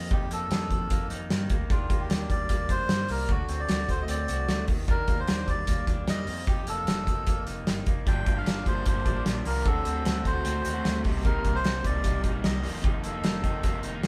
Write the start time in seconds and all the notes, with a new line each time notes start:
Already playing: F2 D#3 A#3 D#5
0.11 F2 D#4 G4, kick, closed hi-hat
0.30 F2 A#3 A4, closed hi-hat
0.50 F2 D#4, snare, closed hi-hat
0.70 F2 D#3, kick, closed hi-hat
0.90 F2 A#3, kick, closed hi-hat
1.10 F2 D#4, closed hi-hat
1.30 G2 D#3, snare, closed hi-hat
1.50 D2 A#3, kick, closed hi-hat
1.70 D#2 D#3 D4 F4, kick, closed hi-hat
1.90 D#2 A#3, kick, closed hi-hat
2.01 G4
2.09 D#2 D4, snare, closed hi-hat
2.30 D#2 G3 D5, kick, closed hi-hat
2.49 D#2 A#3, kick, closed hi-hat
2.69 F2 D4 C5, kick, closed hi-hat
2.89 G2 G3, snare, closed hi-hat
3.08 C2 A#3 A#4, open hi-hat
3.29 D2 D3 F#4, kick, closed hi-hat
3.48 D2 C4, closed hi-hat
3.60 D5
3.68 D2 F#4, snare, closed hi-hat
3.89 D2 A3 C5, kick, closed hi-hat
4.02 D#5
4.08 D2 C4 D5, closed hi-hat
4.28 C2 F#4, closed hi-hat
4.48 D2 A3, snare, closed hi-hat
4.68 D#2 D#3, kick, open hi-hat
4.88 D#3 D4 A#4, kick, closed hi-hat
5.08 D#2 A#3, kick, closed hi-hat
5.20 C5
5.27 D#2 D4, snare, closed hi-hat
5.48 D#2 G3 D5, kick, closed hi-hat
5.67 D#2 A#3, kick, closed hi-hat
5.87 D#2 D4, kick, closed hi-hat
6.07 F2 G3 D#5, snare, closed hi-hat
6.27 F2, open hi-hat
6.47 F2 D#4 G4, kick, closed hi-hat
6.67 F1 A#3 A4, closed hi-hat
6.87 F1 D#4, snare, closed hi-hat
7.07 F1 D#3, kick, closed hi-hat
7.27 F1 A#3, kick, closed hi-hat
7.47 F1 D#4, closed hi-hat
7.67 G1 D#3, snare, closed hi-hat
7.86 F1 A#3, kick, closed hi-hat
8.06 G1 G2 D3 F3 A#3 D4 G5, kick, closed hi-hat
8.26 G1 A#3, kick, closed hi-hat
8.35 F3 A#3 D4 F5
8.46 G1 D4, snare, closed hi-hat
8.65 G1 D3 F3 A#3 D4 C5, kick, closed hi-hat
8.85 G1 D3 F3 A#3 D4 C5, kick, closed hi-hat
9.06 A1 D4, kick, closed hi-hat
9.15 F3 A#3 D4
9.26 A#1 F3, snare, closed hi-hat
9.45 C2 D3 F3 A#3 D4 A#4, open hi-hat
9.64 D2 D3 A3 C4 F#4 A4, kick, closed hi-hat
9.85 D2 C4, closed hi-hat
9.94 A3 C4 F#4
10.05 D2 F#4 A4, snare, closed hi-hat
10.24 D2 D3 A3 C4 F#4 C5, kick, closed hi-hat
10.44 D2 D3 A3 C4 F#4, closed hi-hat
10.65 D#2 F#4, closed hi-hat
10.74 A3 C4 F#4
10.85 D2 A3, snare, closed hi-hat
11.04 C2 C3 G3 A#3 D#4, kick, open hi-hat
11.24 C3 G3 A#3 D#4 A#4, kick, closed hi-hat
11.45 C2 A#3, kick, closed hi-hat
11.54 G3 A#3 D#4 C5
11.65 C2 D#4, snare, closed hi-hat
11.83 C2 C3 G3 A#3 D#4 D5, kick, closed hi-hat
12.03 C2 C3 G3 A#3 D#4, kick, closed hi-hat
12.24 A#1 D#4, kick, closed hi-hat
12.33 G3 A#3 D#4
12.44 C2 G3 D#5, snare, closed hi-hat
12.63 F1 F2 C3 D#3 A#3 D#4, open hi-hat
12.82 F2 C3 D#3 A#3 D#4 G4, kick, closed hi-hat
13.04 F1 A#3 A4, closed hi-hat
13.12 D#3 A#3 D#4
13.24 F1 D#4, snare, closed hi-hat
13.42 F1 C3 D#3 A#3 D#4, kick, closed hi-hat
13.63 F1 C3 D#3 A#3 D#4, kick, closed hi-hat
13.83 F1 D#4, closed hi-hat
13.93 D#3 A#3 D#4
14.03 G1 D#3, snare, closed hi-hat